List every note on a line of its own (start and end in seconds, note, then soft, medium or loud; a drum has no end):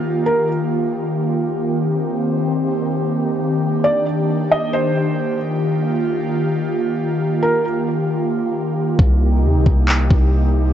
0.00 8.95 D#3 medium
0.00 5.37 A#3 medium
0.00 1.78 F4 medium
0.00 8.95 G4 medium
0.26 0.47 A#4 medium
1.83 3.60 C4 medium
3.62 5.39 D4 medium
3.84 4.05 D5 medium
4.52 4.73 D#5 medium
4.73 5.37 C5 medium
5.41 10.73 A#3 medium
5.41 8.95 F4 medium
7.43 7.64 A#4 medium
8.99 9.45 C2 loud
8.99 10.73 C3 medium
8.99 10.73 D#4 medium
8.99 10.73 G4 medium
8.99 kick loud
9.44 9.56 D#2 loud
9.55 9.65 C2 loud
9.66 10.09 C2 loud
9.66 kick medium
9.89 clap loud
10.11 10.73 C2 loud
10.11 kick loud